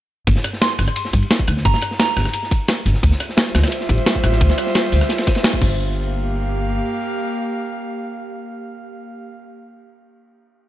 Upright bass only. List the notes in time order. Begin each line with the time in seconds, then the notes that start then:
0.27 G1
0.79 G1
1.13 G2
1.48 D2
1.65 G1
2.17 G1
2.86 G1
3.03 D2
3.55 D2
3.89 A1
4.24 A1
4.41 D2
4.93 D2
5.62 G1